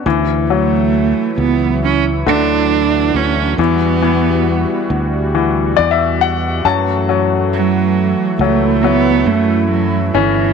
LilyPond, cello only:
\new Staff \with { instrumentName = "Cello" } { \time 4/4 \key d \major \tempo 4 = 68 r8 a4 b8 cis'8 d'4 cis'8 | b4. r2 r8 | r8 fis4 a8 b8 a8 fis8 e8 | }